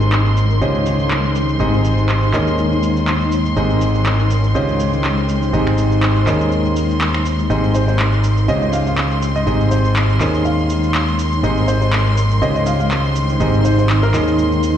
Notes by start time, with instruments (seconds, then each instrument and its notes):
Already playing: fingered electric bass G#1, upright piano G#2 C4 D#4 G4 G#4 D#5, ambient pad D#4, violin section C6
0.01 shaker
0.08 ambient pad C5
0.12 clap, shaker
0.26 shaker
0.37 shaker
0.51 shaker
0.61 fingered electric bass C#2, upright piano C#3 C#4 F4 G4 C5 D#5, shaker
0.75 shaker
0.86 shaker
1.00 shaker
1.11 clap, shaker
1.24 shaker
1.35 shaker
1.49 shaker
1.60 fingered electric bass G#1, upright piano G#2 C4 D#4 G4 G#4 D#5, shaker
1.74 shaker
1.84 shaker
1.98 shaker
2.09 clap, shaker
2.23 shaker
2.33 fingered electric bass D#2, upright piano D#3 C#4 D#4 G#4 A#4 D#5, clap, shaker
2.47 shaker
2.58 shaker
2.72 shaker
2.83 shaker
2.97 shaker
3.07 clap, shaker
3.21 shaker
3.32 shaker
3.46 shaker
3.56 fingered electric bass G#1, upright piano G#2 C4 D#4 G4 G#4 D#5, shaker
3.70 shaker
3.81 shaker
3.95 shaker
4.01 ambient pad C5
4.06 clap, shaker
4.19 shaker
4.30 shaker
4.44 shaker
4.55 fingered electric bass C#2, upright piano C#3 C#4 F4 G4 C5 D#5, shaker
4.69 shaker
4.80 shaker
4.93 shaker
5.04 clap, shaker
5.18 shaker
5.29 shaker
5.42 shaker
5.53 fingered electric bass G#1, upright piano G#2 C4 D#4 G4 G#4 D#5, shaker
5.67 finger snap, shaker
5.78 shaker
5.92 shaker
6.03 clap, shaker
6.16 shaker
6.27 fingered electric bass D#2, upright piano D#3 C#4 D#4 G#4 A#4 D#5, clap, shaker
6.41 shaker
6.52 shaker
6.65 shaker
6.76 shaker
6.90 shaker
7.01 clap, shaker
7.14 finger snap, shaker
7.26 shaker
7.39 shaker
7.50 fingered electric bass G#1, upright piano G#2 C4 D#4 G4 G#4 D#5, violin section C6, shaker
7.64 shaker
7.75 grand piano C5, shaker
7.88 grand piano C5, shaker
7.95 ambient pad C5
7.99 clap, shaker
8.13 shaker
8.24 shaker
8.37 shaker
8.48 fingered electric bass C#2, upright piano C#3 C#4 F4 G4 C5 D#5, grand piano D#5, shaker
8.62 grand piano D#5, shaker
8.73 grand piano F5, shaker
8.87 grand piano F5, shaker
8.98 clap, shaker
9.11 shaker
9.22 shaker
9.36 grand piano D#5, shaker
9.47 fingered electric bass G#1, upright piano G#2 C4 D#4 G4 G#4 D#5, shaker
9.60 shaker
9.71 grand piano C5, shaker
9.85 shaker
9.96 clap, shaker
10.10 shaker
10.20 fingered electric bass D#2, upright piano D#3 C#4 D#4 G#4 A#4 D#5, clap, shaker
10.34 shaker
10.45 grand piano F5, shaker
10.59 shaker
10.70 shaker
10.83 shaker
10.94 clap, shaker
11.08 shaker
11.19 shaker
11.33 shaker
11.43 fingered electric bass G#1, upright piano G#2 C4 D#4 G4 G#4 D#5, ambient pad D#4, shaker
11.57 shaker
11.63 ambient pad C5
11.68 grand piano C5, shaker
11.82 grand piano C5, shaker
11.93 clap, shaker
12.06 shaker
12.17 shaker
12.31 shaker
12.42 fingered electric bass C#2, upright piano C#3 C#4 F4 G4 C5 D#5, grand piano D#5, shaker
12.55 grand piano D#5, shaker
12.66 grand piano F5, shaker
12.80 grand piano F5, shaker
12.91 clap, shaker
13.05 shaker
13.16 shaker
13.29 shaker
13.40 fingered electric bass G#1, upright piano G#2 C4 D#4 G4 G#4 D#5, shaker
13.54 shaker
13.65 grand piano C5, shaker
13.78 grand piano C5, shaker
13.89 clap, shaker
14.03 grand piano A#4, shaker
14.14 fingered electric bass D#2, upright piano D#3 C#4 D#4 G#4 A#4 D#5, clap, shaker
14.28 shaker
14.39 shaker
14.52 shaker
14.63 shaker